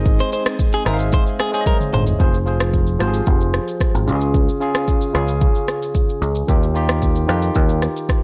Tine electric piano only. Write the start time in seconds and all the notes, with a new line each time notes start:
Already playing: G#3 G#4 C5 D#5
0.85 G#3 G#4 C5 E5
0.94 F5
1.52 G#3 G#4 C5 C#5
1.61 D#5
2.19 F3 F4 G#4 C5
2.45 F3 F4 G#4 C5
2.99 F3 F4 G4 C5
3.07 G#4
4.06 C#3 C#4 F4 G4
4.15 G#4
4.60 C#3 C#4 F4 G#4
5.14 C#3 C#4 F4 G#4
6.47 D#3 D#4 F4 G4
6.74 D#3 D#4 F4 G4
7.27 D#3 D#4 F4 G4